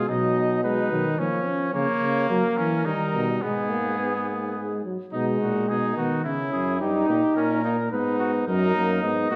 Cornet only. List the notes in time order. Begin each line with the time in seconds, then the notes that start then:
0.08 D#5
0.64 B4
1.19 C#5
1.74 C#5
2.29 A#4
2.86 A#4
3.43 G#4
5.12 D#4
5.41 F#4
5.69 G#4
5.97 F#4
6.25 E4
6.52 G#4
6.80 G4
7.08 G4
7.36 A#4
7.92 B4
8.19 F#4
8.47 A#4
9.03 D#5